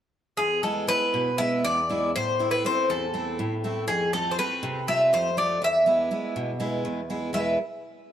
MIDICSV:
0, 0, Header, 1, 3, 480
1, 0, Start_track
1, 0, Tempo, 500000
1, 369, Time_signature, 7, 3, 24, 8
1, 4687, Tempo, 492207
1, 7845, End_track
2, 0, Start_track
2, 0, Title_t, "Bouzouki"
2, 0, Program_c, 0, 25
2, 358, Note_on_c, 0, 68, 80
2, 602, Note_off_c, 0, 68, 0
2, 606, Note_on_c, 0, 69, 66
2, 832, Note_off_c, 0, 69, 0
2, 849, Note_on_c, 0, 71, 91
2, 1322, Note_off_c, 0, 71, 0
2, 1326, Note_on_c, 0, 76, 90
2, 1553, Note_off_c, 0, 76, 0
2, 1579, Note_on_c, 0, 74, 86
2, 2024, Note_off_c, 0, 74, 0
2, 2070, Note_on_c, 0, 72, 89
2, 2406, Note_off_c, 0, 72, 0
2, 2410, Note_on_c, 0, 71, 71
2, 2524, Note_off_c, 0, 71, 0
2, 2554, Note_on_c, 0, 72, 82
2, 2768, Note_off_c, 0, 72, 0
2, 2783, Note_on_c, 0, 69, 60
2, 3225, Note_off_c, 0, 69, 0
2, 3722, Note_on_c, 0, 68, 84
2, 3950, Note_off_c, 0, 68, 0
2, 3967, Note_on_c, 0, 69, 76
2, 4128, Note_off_c, 0, 69, 0
2, 4141, Note_on_c, 0, 72, 65
2, 4208, Note_off_c, 0, 72, 0
2, 4212, Note_on_c, 0, 71, 84
2, 4656, Note_off_c, 0, 71, 0
2, 4687, Note_on_c, 0, 76, 88
2, 4931, Note_off_c, 0, 76, 0
2, 4935, Note_on_c, 0, 72, 86
2, 5158, Note_off_c, 0, 72, 0
2, 5172, Note_on_c, 0, 74, 71
2, 5397, Note_off_c, 0, 74, 0
2, 5428, Note_on_c, 0, 76, 85
2, 6824, Note_off_c, 0, 76, 0
2, 7084, Note_on_c, 0, 76, 75
2, 7311, Note_off_c, 0, 76, 0
2, 7845, End_track
3, 0, Start_track
3, 0, Title_t, "Steel-string acoustic guitar"
3, 0, Program_c, 1, 25
3, 370, Note_on_c, 1, 40, 60
3, 606, Note_on_c, 1, 56, 42
3, 612, Note_on_c, 1, 59, 40
3, 619, Note_on_c, 1, 64, 40
3, 828, Note_off_c, 1, 56, 0
3, 831, Note_off_c, 1, 59, 0
3, 837, Note_off_c, 1, 40, 0
3, 838, Note_off_c, 1, 64, 0
3, 839, Note_on_c, 1, 56, 41
3, 847, Note_on_c, 1, 59, 34
3, 849, Note_on_c, 1, 64, 47
3, 1093, Note_on_c, 1, 47, 57
3, 1229, Note_off_c, 1, 56, 0
3, 1231, Note_off_c, 1, 59, 0
3, 1235, Note_off_c, 1, 64, 0
3, 1335, Note_on_c, 1, 56, 46
3, 1337, Note_on_c, 1, 59, 39
3, 1346, Note_on_c, 1, 64, 47
3, 1559, Note_off_c, 1, 47, 0
3, 1584, Note_on_c, 1, 40, 61
3, 1719, Note_off_c, 1, 56, 0
3, 1721, Note_off_c, 1, 59, 0
3, 1723, Note_off_c, 1, 64, 0
3, 1819, Note_on_c, 1, 56, 42
3, 1828, Note_on_c, 1, 59, 37
3, 1828, Note_on_c, 1, 64, 51
3, 2010, Note_off_c, 1, 56, 0
3, 2012, Note_off_c, 1, 59, 0
3, 2014, Note_off_c, 1, 64, 0
3, 2045, Note_off_c, 1, 40, 0
3, 2070, Note_on_c, 1, 45, 56
3, 2299, Note_on_c, 1, 57, 42
3, 2306, Note_on_c, 1, 64, 50
3, 2307, Note_on_c, 1, 60, 35
3, 2526, Note_off_c, 1, 57, 0
3, 2528, Note_off_c, 1, 45, 0
3, 2532, Note_off_c, 1, 60, 0
3, 2535, Note_off_c, 1, 64, 0
3, 2538, Note_on_c, 1, 57, 42
3, 2542, Note_on_c, 1, 60, 42
3, 2552, Note_on_c, 1, 64, 42
3, 2781, Note_on_c, 1, 40, 61
3, 2921, Note_off_c, 1, 57, 0
3, 2924, Note_off_c, 1, 60, 0
3, 2926, Note_off_c, 1, 64, 0
3, 3011, Note_on_c, 1, 57, 43
3, 3016, Note_on_c, 1, 60, 45
3, 3021, Note_on_c, 1, 64, 48
3, 3243, Note_off_c, 1, 40, 0
3, 3255, Note_on_c, 1, 45, 64
3, 3396, Note_off_c, 1, 57, 0
3, 3399, Note_off_c, 1, 60, 0
3, 3402, Note_off_c, 1, 64, 0
3, 3495, Note_on_c, 1, 57, 47
3, 3499, Note_on_c, 1, 60, 43
3, 3510, Note_on_c, 1, 64, 40
3, 3686, Note_off_c, 1, 57, 0
3, 3689, Note_off_c, 1, 60, 0
3, 3691, Note_off_c, 1, 64, 0
3, 3719, Note_off_c, 1, 45, 0
3, 3736, Note_on_c, 1, 41, 60
3, 3968, Note_on_c, 1, 57, 44
3, 3974, Note_on_c, 1, 60, 39
3, 3979, Note_on_c, 1, 65, 50
3, 4198, Note_off_c, 1, 41, 0
3, 4199, Note_off_c, 1, 57, 0
3, 4205, Note_off_c, 1, 60, 0
3, 4209, Note_off_c, 1, 65, 0
3, 4210, Note_on_c, 1, 57, 43
3, 4216, Note_on_c, 1, 60, 41
3, 4220, Note_on_c, 1, 65, 45
3, 4442, Note_on_c, 1, 48, 66
3, 4593, Note_off_c, 1, 57, 0
3, 4596, Note_off_c, 1, 60, 0
3, 4599, Note_off_c, 1, 65, 0
3, 4684, Note_on_c, 1, 57, 43
3, 4690, Note_on_c, 1, 60, 42
3, 4694, Note_on_c, 1, 65, 49
3, 4912, Note_off_c, 1, 48, 0
3, 4927, Note_on_c, 1, 41, 58
3, 5073, Note_off_c, 1, 57, 0
3, 5077, Note_off_c, 1, 60, 0
3, 5079, Note_off_c, 1, 65, 0
3, 5163, Note_on_c, 1, 57, 46
3, 5169, Note_on_c, 1, 60, 39
3, 5174, Note_on_c, 1, 65, 45
3, 5360, Note_off_c, 1, 57, 0
3, 5364, Note_off_c, 1, 60, 0
3, 5364, Note_off_c, 1, 65, 0
3, 5398, Note_off_c, 1, 41, 0
3, 5403, Note_on_c, 1, 40, 59
3, 5641, Note_on_c, 1, 56, 43
3, 5647, Note_on_c, 1, 59, 39
3, 5653, Note_on_c, 1, 64, 48
3, 5871, Note_off_c, 1, 56, 0
3, 5874, Note_off_c, 1, 59, 0
3, 5876, Note_off_c, 1, 40, 0
3, 5876, Note_off_c, 1, 64, 0
3, 5883, Note_on_c, 1, 56, 40
3, 5888, Note_on_c, 1, 59, 34
3, 5888, Note_on_c, 1, 64, 46
3, 6127, Note_on_c, 1, 47, 59
3, 6272, Note_off_c, 1, 56, 0
3, 6274, Note_off_c, 1, 59, 0
3, 6276, Note_off_c, 1, 64, 0
3, 6359, Note_on_c, 1, 56, 44
3, 6365, Note_on_c, 1, 64, 53
3, 6367, Note_on_c, 1, 59, 38
3, 6597, Note_off_c, 1, 47, 0
3, 6604, Note_on_c, 1, 40, 62
3, 6750, Note_off_c, 1, 56, 0
3, 6752, Note_off_c, 1, 59, 0
3, 6753, Note_off_c, 1, 64, 0
3, 6848, Note_on_c, 1, 56, 48
3, 6853, Note_on_c, 1, 59, 35
3, 6854, Note_on_c, 1, 64, 47
3, 7043, Note_off_c, 1, 56, 0
3, 7043, Note_off_c, 1, 59, 0
3, 7046, Note_off_c, 1, 64, 0
3, 7061, Note_off_c, 1, 40, 0
3, 7072, Note_on_c, 1, 40, 51
3, 7077, Note_on_c, 1, 47, 47
3, 7086, Note_on_c, 1, 56, 48
3, 7092, Note_on_c, 1, 64, 45
3, 7094, Note_on_c, 1, 59, 42
3, 7098, Note_on_c, 1, 71, 45
3, 7305, Note_off_c, 1, 40, 0
3, 7310, Note_off_c, 1, 47, 0
3, 7310, Note_off_c, 1, 56, 0
3, 7311, Note_off_c, 1, 59, 0
3, 7316, Note_off_c, 1, 64, 0
3, 7316, Note_off_c, 1, 71, 0
3, 7845, End_track
0, 0, End_of_file